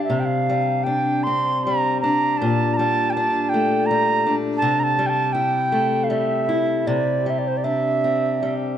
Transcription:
0.00 0.49 G3 medium
0.00 0.86 D4 soft
0.00 0.86 G4 soft
0.04 0.21 E5 medium
0.10 2.41 C3 medium
0.20 0.27 G5 medium
0.25 0.85 F5 medium
0.49 1.66 G3 soft
0.84 2.03 D4 medium
0.84 1.25 G5 medium
1.23 2.49 C4 medium
1.23 1.65 C6 medium
1.64 2.79 G3 medium
1.64 2.00 A#5 medium
2.01 3.16 D4 medium
2.01 2.39 A#5 medium
2.37 2.75 A5 medium
2.42 4.62 A#2 medium
2.74 3.12 A5 medium
2.74 2.78 A#5 medium
2.79 3.90 G3 medium
3.10 3.13 G5 medium
3.10 3.51 A5 loud
3.17 4.25 D4 medium
3.49 3.87 G5 medium
3.54 5.02 A3 medium
3.86 4.35 A#5 loud
3.91 4.98 G3 medium
4.26 4.70 D4 medium
4.57 4.81 A5 loud
4.62 6.86 C3 medium
4.80 5.08 A5 loud
4.80 4.85 A#5 medium
4.99 6.10 G3 medium
5.06 5.11 G5 medium
5.06 5.34 A5 loud
5.33 6.48 E4 medium
5.33 6.05 G5 medium
5.72 6.95 A3 medium
6.04 6.11 F5 medium
6.09 7.26 G3 medium
6.09 6.89 E5 medium
6.49 7.64 E4 medium
6.87 8.78 C3 medium
6.87 7.31 D5 medium
7.26 8.41 G3 medium
7.26 7.40 E5 medium
7.39 7.49 D5 medium
7.48 7.59 C5 medium
7.57 7.66 D5 medium
7.64 8.78 D4 medium
7.64 8.55 E5 medium
8.04 8.78 C4 soft
8.42 8.78 G3 soft

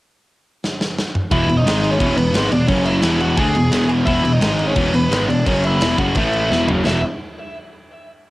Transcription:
0.64 snare medium
0.81 snare medium
0.98 snare medium
1.15 mid tom medium
1.31 1.47 E1 medium
1.31 1.46 E2 medium
1.31 1.47 B2 loud
1.31 1.48 E3 loud
1.31 1.56 E4 medium
1.31 1.57 E5 medium
1.31 kick loud
1.31 crash medium
1.47 1.64 E1 medium
1.47 1.62 E2 medium
1.47 1.62 B2 medium
1.47 crash medium
1.57 1.90 D#4 medium
1.57 1.92 D#5 loud
1.66 1.98 G#1 medium
1.66 1.99 G#2 medium
1.66 1.99 D#3 loud
1.66 2.00 G#3 loud
1.66 snare loud
1.66 crash medium
1.84 crash medium
1.91 2.16 C#4 medium
1.91 2.17 C#5 loud
1.99 2.16 E1 loud
1.99 2.15 E2 loud
1.99 2.15 B2 loud
1.99 2.17 E3 loud
1.99 kick loud
1.99 crash medium
2.16 2.33 E1 medium
2.16 2.30 E2 medium
2.16 2.30 B2 medium
2.16 2.50 B3 medium
2.16 2.52 B4 medium
2.16 crash medium
2.34 2.50 G#1 loud
2.34 2.51 G#2 medium
2.34 2.51 D#3 loud
2.34 2.51 G#3 loud
2.34 snare loud
2.34 crash medium
2.51 2.68 E1 medium
2.51 2.65 E2 medium
2.51 2.66 B2 medium
2.51 2.68 D5 loud
2.51 crash medium
2.55 2.69 D4 medium
2.68 3.01 F#1 medium
2.68 3.01 F#2 loud
2.68 3.02 C#3 medium
2.68 3.03 F#3 loud
2.68 2.86 C#4 medium
2.68 2.85 C#5 medium
2.68 kick loud
2.68 crash medium
2.85 3.19 E4 medium
2.85 3.20 E5 medium
2.85 crash medium
3.02 3.35 E1 loud
3.02 3.37 E2 medium
3.02 3.37 B2 loud
3.02 3.37 E3 loud
3.02 snare loud
3.02 crash medium
3.20 3.38 F#4 medium
3.20 3.37 F#5 medium
3.20 crash medium
3.37 3.53 D2 loud
3.37 3.55 D3 loud
3.37 3.55 A3 loud
3.37 3.55 D4 loud
3.37 3.87 G#4 medium
3.37 3.89 G#5 loud
3.37 kick loud
3.37 crash medium
3.53 3.70 E1 medium
3.53 3.69 E2 medium
3.53 3.69 B2 medium
3.53 crash medium
3.71 4.04 E1 loud
3.71 4.05 E2 loud
3.71 4.05 B2 loud
3.71 4.05 E3 loud
3.71 snare loud
3.71 crash medium
3.89 crash medium
4.06 4.23 E1 loud
4.06 4.22 E2 medium
4.06 4.23 B2 loud
4.06 4.24 E3 loud
4.06 4.32 E4 medium
4.06 4.33 E5 loud
4.06 kick loud
4.06 crash medium
4.23 4.40 E1 medium
4.23 4.38 E2 medium
4.23 4.38 B2 medium
4.23 crash medium
4.33 4.67 D#4 medium
4.33 4.67 D#5 loud
4.41 4.74 G#1 loud
4.41 4.75 G#2 medium
4.41 4.76 D#3 loud
4.41 4.76 G#3 loud
4.41 snare loud
4.41 crash medium
4.59 crash medium
4.68 4.93 C#4 medium
4.68 4.95 C#5 loud
4.76 4.92 E1 loud
4.76 4.92 E2 loud
4.76 4.92 B2 loud
4.76 4.93 E3 loud
4.76 kick loud
4.76 crash medium
4.94 5.10 E1 medium
4.94 5.08 E2 medium
4.94 5.08 B2 medium
4.94 5.28 B3 medium
4.94 5.29 B4 medium
4.94 crash medium
5.11 5.28 G#1 loud
5.11 5.27 G#2 loud
5.11 5.28 D#3 loud
5.11 5.28 G#3 loud
5.11 snare loud
5.11 crash medium
5.27 5.45 E1 medium
5.27 5.42 E2 medium
5.27 5.42 B2 medium
5.27 5.46 D4 medium
5.27 5.45 D5 medium
5.27 crash medium
5.46 5.79 F#1 loud
5.46 5.80 F#2 loud
5.46 5.80 C#3 loud
5.46 5.81 F#3 loud
5.46 5.64 C#4 medium
5.46 5.65 C#5 medium
5.46 kick loud
5.46 crash medium
5.64 5.98 E4 medium
5.64 5.99 E5 loud
5.64 crash medium
5.80 5.97 E1 medium
5.80 5.98 E2 loud
5.80 5.99 B2 loud
5.80 5.99 E3 loud
5.80 snare loud
5.80 crash medium
5.98 6.15 F#1 medium
5.98 6.15 F#2 loud
5.98 6.16 C#3 loud
5.98 6.16 F#3 loud
5.98 6.16 F#4 medium
5.98 6.15 F#5 medium
5.98 kick loud
5.98 crash medium
6.15 6.49 A1 loud
6.15 6.50 A2 medium
6.15 6.49 E3 loud
6.15 6.51 A3 loud
6.15 6.66 E5 medium
6.15 kick loud
6.15 crash medium
6.19 6.67 E4 medium
6.33 crash medium
6.50 6.67 E1 medium
6.50 6.68 E2 loud
6.50 6.68 B2 loud
6.50 6.68 E3 loud
6.50 snare medium
6.68 6.86 F#1 loud
6.68 6.84 F#2 medium
6.68 6.85 C#3 loud
6.68 6.86 F#3 medium
6.68 floor tom loud
6.84 7.03 E1 medium
6.84 6.99 E2 medium
6.84 7.00 B2 medium
6.84 7.00 E3 loud
6.84 7.03 E5 medium
6.84 snare loud

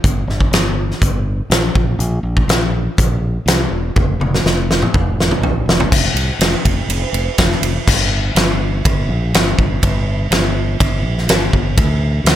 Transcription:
0.04 0.23 G1 medium
0.04 kick loud
0.04 closed hi-hat medium
0.27 0.47 G1 medium
0.27 snare soft
0.40 kick medium
0.51 0.90 G1 medium
0.51 snare loud
0.51 closed hi-hat medium
0.91 snare soft
1.02 1.40 G1 medium
1.02 kick loud
1.02 closed hi-hat medium
1.50 1.69 A#1 medium
1.50 snare loud
1.50 closed hi-hat medium
1.75 1.95 A#1 medium
1.75 kick loud
1.99 2.18 A#1 medium
1.99 closed hi-hat medium
2.23 2.43 A#1 medium
2.37 kick medium
2.48 2.87 A#1 loud
2.48 snare loud
2.48 closed hi-hat medium
2.98 3.37 A#1 medium
2.98 kick loud
2.98 closed hi-hat medium
3.46 3.65 C2 medium
3.46 snare loud
3.46 closed hi-hat medium
3.71 3.90 E1 medium
3.96 4.15 F1 medium
3.96 kick loud
3.96 high tom medium
4.20 4.39 F1 medium
4.20 high tom medium
4.34 snare medium
4.44 4.83 F1 loud
4.44 snare medium
4.71 snare medium
4.82 mid tom medium
4.94 5.32 F1 medium
4.94 kick loud
4.94 mid tom medium
5.20 snare medium
5.31 mid tom medium
5.42 5.61 A1 loud
5.42 floor tom loud
5.66 5.86 F1 medium
5.66 snare loud
5.80 floor tom medium
5.92 6.07 F1 medium
5.92 kick loud
5.92 crash loud
6.14 6.30 C2 medium
6.14 ride medium
6.39 6.54 F1 medium
6.39 snare loud
6.39 ride loud
6.65 6.80 F1 medium
6.65 kick loud
6.65 ride medium
6.89 7.03 F1 medium
6.89 ride loud
7.13 7.28 F1 medium
7.13 ride medium
7.38 7.53 F1 medium
7.38 kick medium
7.38 snare loud
7.38 ride loud
7.52 snare soft
7.62 7.77 F1 medium
7.62 ride medium
7.87 8.33 G1 medium
7.87 kick loud
7.87 crash loud
8.35 8.82 G1 medium
8.35 snare loud
8.35 ride bell medium
8.85 9.08 G1 medium
8.85 kick loud
8.85 ride bell medium
9.09 9.32 A#1 medium
9.34 9.57 G1 medium
9.34 snare loud
9.34 ride bell medium
9.58 9.81 G1 medium
9.58 kick medium
9.83 10.29 G1 medium
9.83 kick loud
9.83 ride bell medium
10.31 10.77 G1 medium
10.31 snare loud
10.31 ride bell medium
10.80 11.02 G1 medium
10.80 kick loud
10.80 ride bell medium
11.03 11.27 A#1 loud
11.18 snare soft
11.28 11.51 G1 loud
11.28 snare loud
11.28 ride bell medium
11.53 11.76 G1 medium
11.53 kick medium
11.78 12.23 D2 medium
11.78 kick loud
11.78 ride bell medium
12.24 12.36 D2 loud
12.24 snare loud
12.24 ride bell medium

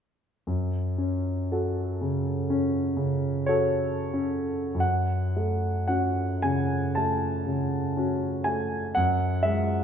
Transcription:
0.47 2.47 F#2 soft
0.98 1.82 C#4 soft
1.52 1.99 F#4 soft
1.52 1.99 A4 soft
2.01 2.78 C#3 soft
2.50 3.28 C#4 soft
2.97 3.85 C#3 soft
3.46 4.09 F#4 soft
3.46 4.09 A4 soft
3.46 4.79 C#5 medium
4.14 4.80 C#4 soft
4.75 6.88 F#2 soft
4.80 5.86 F#5 medium
5.36 6.21 A3 soft
5.87 6.38 C#4 soft
5.87 6.38 F#4 soft
5.87 6.42 F#5 medium
6.42 7.26 C#3 soft
6.42 6.95 G#5 medium
6.95 7.77 A3 soft
6.95 8.45 A5 medium
7.45 8.24 C#3 soft
7.97 8.42 C#4 soft
7.97 8.42 F#4 soft
8.44 8.95 A3 soft
8.44 8.95 G#5 medium
8.95 9.84 F#2 soft
8.95 9.44 F#5 medium
9.43 9.84 G#3 soft
9.43 9.84 E5 medium

